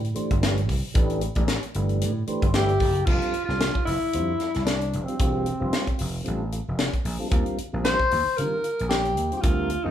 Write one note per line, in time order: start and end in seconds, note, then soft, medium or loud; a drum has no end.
0.00 0.10 A2 medium
0.05 closed hi-hat soft
0.15 0.34 E3 loud
0.15 0.34 A3 medium
0.15 0.35 D4 medium
0.15 0.35 G4 medium
0.15 0.35 C5 loud
0.15 muted slap bass stroke soft
0.15 closed hi-hat medium
0.30 0.69 G1 medium
0.30 kick medium
0.30 closed hi-hat soft
0.40 0.60 E3 medium
0.40 0.61 A3 medium
0.40 0.61 D4 medium
0.40 0.61 G4 medium
0.40 0.61 B4 medium
0.40 snare loud
0.40 closed hi-hat medium
0.57 closed hi-hat soft
0.68 0.80 C2 medium
0.68 0.76 G4 soft
0.68 0.76 B4 soft
0.68 kick medium
0.68 open hi-hat medium
0.85 muted slap bass stroke soft
0.94 1.27 A1 medium
0.94 1.22 E3 loud
0.94 1.22 A3 medium
0.94 1.22 D4 medium
0.94 1.22 G4 medium
0.94 1.22 B4 medium
0.94 kick loud
0.94 closed hi-hat medium
1.10 closed hi-hat soft
1.21 closed hi-hat medium
1.35 1.56 A1 medium
1.35 1.44 E3 medium
1.35 1.44 A3 medium
1.35 1.44 D4 medium
1.35 1.44 G4 medium
1.35 1.45 D5 medium
1.35 kick medium
1.35 closed hi-hat soft
1.48 1.56 G4 soft
1.48 1.56 C5 soft
1.48 snare medium
1.48 closed hi-hat medium
1.63 closed hi-hat soft
1.74 2.03 G1 medium
1.74 2.12 E3 medium
1.74 2.12 A3 medium
1.74 2.12 D4 medium
1.74 2.12 G4 medium
1.74 2.13 B4 medium
1.74 closed hi-hat medium
1.89 closed hi-hat soft
2.01 2.22 A2 medium
2.01 closed hi-hat medium
2.27 2.46 E3 loud
2.27 2.46 A3 medium
2.27 2.47 D4 medium
2.27 2.47 G4 medium
2.27 2.47 B4 loud
2.27 2.52 C5 medium
2.27 muted slap bass stroke soft
2.27 closed hi-hat soft
2.42 2.54 G1 medium
2.42 kick medium
2.42 closed hi-hat soft
2.54 2.78 G1 medium
2.54 2.73 E3 medium
2.54 2.73 A3 medium
2.54 2.73 D4 medium
2.54 3.07 G4 loud
2.54 2.73 G4 medium
2.54 2.74 B4 medium
2.54 2.79 E5 medium
2.54 snare loud
2.54 closed hi-hat medium
2.69 closed hi-hat soft
2.79 3.04 F#1 medium
2.79 2.87 G4 soft
2.79 2.88 A4 soft
2.79 3.05 A5 medium
2.79 kick medium
2.79 open hi-hat medium
2.95 closed hi-hat soft
3.05 3.18 F1 medium
3.05 3.34 D3 medium
3.05 3.34 G3 medium
3.05 3.34 C4 medium
3.05 3.45 F4 loud
3.05 3.34 F4 medium
3.05 3.34 A4 medium
3.05 kick loud
3.05 crash medium
3.22 closed hi-hat soft
3.34 muted slap bass stroke soft
3.34 closed hi-hat medium
3.45 3.69 C2 medium
3.45 3.75 D3 medium
3.45 3.76 G3 medium
3.45 3.76 C4 medium
3.45 3.82 F4 medium
3.45 snare soft
3.50 3.76 F4 medium
3.50 3.76 A4 medium
3.60 snare medium
3.60 closed hi-hat medium
3.75 kick medium
3.85 3.98 F1 medium
3.85 4.62 E4 medium
3.85 3.95 F4 soft
3.85 snare soft
3.85 open hi-hat medium
3.89 3.95 C5 soft
4.03 muted slap bass stroke soft
4.13 4.34 F2 medium
4.13 4.33 D3 medium
4.13 4.33 G3 medium
4.13 4.33 C4 medium
4.13 4.33 F4 medium
4.13 4.33 C5 medium
4.13 closed hi-hat medium
4.40 4.47 F4 soft
4.40 4.48 A4 soft
4.40 snare soft
4.40 closed hi-hat medium
4.54 4.96 C2 medium
4.54 snare soft
4.54 closed hi-hat soft
4.65 5.06 D4 medium
4.65 snare loud
4.65 closed hi-hat medium
4.81 closed hi-hat soft
4.93 5.05 F1 medium
4.93 closed hi-hat medium
5.04 5.15 D3 medium
5.04 5.16 G3 medium
5.04 6.12 C4 medium
5.04 5.16 C4 medium
5.04 5.16 F4 medium
5.08 5.16 G4 medium
5.08 closed hi-hat soft
5.19 5.51 E1 medium
5.19 5.47 D3 medium
5.19 5.47 G3 medium
5.19 5.47 C4 medium
5.19 5.47 F4 medium
5.19 5.47 G4 medium
5.19 kick medium
5.19 closed hi-hat medium
5.46 closed hi-hat medium
5.60 5.70 F1 medium
5.60 5.87 D3 medium
5.60 5.87 G3 medium
5.60 5.87 C4 medium
5.60 5.88 F4 medium
5.60 5.88 C5 medium
5.73 snare medium
5.73 closed hi-hat medium
5.87 muted slap bass stroke soft
5.87 kick medium
5.87 closed hi-hat soft
5.98 6.20 F1 medium
5.98 6.06 F4 soft
5.98 6.06 G4 soft
5.98 open hi-hat medium
6.24 6.59 A1 medium
6.24 6.44 D3 medium
6.24 6.44 G3 medium
6.24 6.44 C4 medium
6.24 6.44 F4 medium
6.24 6.44 A4 medium
6.24 closed hi-hat medium
6.52 6.59 F4 soft
6.52 6.60 A4 soft
6.52 closed hi-hat medium
6.68 6.88 F1 medium
6.79 snare loud
6.79 closed hi-hat medium
6.93 kick medium
6.93 closed hi-hat soft
7.05 7.16 A#1 medium
7.05 open hi-hat medium
7.19 7.28 D3 medium
7.19 7.28 G3 medium
7.19 7.28 C4 medium
7.19 7.28 F4 medium
7.19 7.28 A4 medium
7.30 7.43 D#2 medium
7.30 7.58 D3 loud
7.30 7.58 G3 medium
7.30 7.58 C4 medium
7.30 7.58 F4 medium
7.30 7.58 A#4 loud
7.30 kick loud
7.30 closed hi-hat medium
7.46 closed hi-hat soft
7.58 muted slap bass stroke soft
7.58 closed hi-hat medium
7.72 7.94 A#1 medium
7.72 8.00 D3 medium
7.72 8.00 G3 medium
7.72 8.00 C4 medium
7.72 8.00 F4 medium
7.72 8.00 A#4 medium
7.85 8.39 C5 loud
7.85 snare loud
7.85 closed hi-hat medium
8.00 kick medium
8.11 8.23 D#2 medium
8.11 8.18 F4 soft
8.11 8.19 G4 soft
8.11 open hi-hat medium
8.27 muted slap bass stroke soft
8.37 8.57 D3 medium
8.37 8.59 D#3 medium
8.37 8.57 G3 medium
8.37 8.57 C4 medium
8.37 8.58 F4 medium
8.37 8.88 A#4 medium
8.37 8.58 A#4 medium
8.37 closed hi-hat medium
8.64 8.71 F4 soft
8.64 8.72 A#4 soft
8.64 closed hi-hat medium
8.79 9.18 A#1 medium
8.79 closed hi-hat soft
8.89 9.34 G4 medium
8.89 snare loud
8.89 closed hi-hat medium
9.05 closed hi-hat soft
9.17 9.29 D#2 medium
9.17 closed hi-hat medium
9.32 9.40 D3 medium
9.32 9.40 G3 medium
9.32 9.40 C4 medium
9.32 9.40 F4 medium
9.32 9.41 C5 medium
9.32 closed hi-hat soft
9.37 9.85 F4 medium
9.37 9.43 G4 medium
9.42 9.75 D2 medium
9.42 9.70 D3 medium
9.42 9.70 G3 medium
9.42 9.70 C4 medium
9.42 9.71 F4 medium
9.42 9.70 A#4 medium
9.42 kick loud
9.42 closed hi-hat medium
9.70 closed hi-hat medium
9.83 9.91 D#2 medium
9.83 9.91 D3 medium
9.83 9.91 G3 medium
9.83 9.91 C4 medium
9.83 9.91 D#4 medium
9.83 9.91 F4 medium
9.83 9.91 A#4 medium